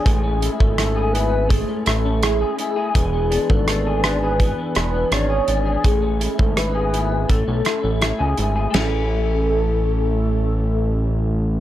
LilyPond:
<<
  \new Staff \with { instrumentName = "Soft synth lead" } { \time 4/4 \key a \major \tempo 4 = 83 gis'8. a'8. b'8 gis'8 a'8 gis'8. r16 | gis'8. a'8. b'4 b'8 cis''8. r16 | gis'8. a'16 b'4 a'4. r8 | a'1 | }
  \new Staff \with { instrumentName = "Clean electric guitar" } { \time 4/4 \key a \major a16 cis'16 e'16 cis'16 e'16 gis'16 e'8 a16 cis'16 e'16 cis'16 e'16 gis'16 e'16 gis'16 | e16 b16 d'16 b16 d'16 gis'16 d'16 gis'16 e16 b16 d'16 b16 d'16 gis'16 d'16 gis'16 | a16 cis'16 e'16 cis'16 e'16 gis'16 e'8 a16 cis'16 e'16 cis'16 e'16 gis'16 e'16 gis'16 | <a cis' e'>1 | }
  \new Staff \with { instrumentName = "Analog synth bass" } { \clef bass \time 4/4 \key a \major a,,8. gis,,4. r16 a,,4 r8 | e,,8. gis,,4. r16 e,,8 gis,,8 gis,,8 | a,,8. gis,,4~ gis,,16 a,,16 b,,16 r16 a,,8 cis,16 gis,,8 | a,,1 | }
  \new DrumStaff \with { instrumentName = "Drums" } \drummode { \time 4/4 <hh bd>8 hh16 bd16 <hh ss>8 hh8 <hh bd>8 <hh ss>8 <hh ss>8 hh8 | <hh bd>8 hh16 bd16 <hh ss>8 <hh ss>8 <hh bd>8 <hh ss>8 <hh ss>8 hh8 | <hh bd>8 hh16 bd16 <hh ss>8 hh8 <hh bd>8 <hh ss>8 <hh ss>8 hh8 | <rb sn>4 r4 r4 r4 | }
>>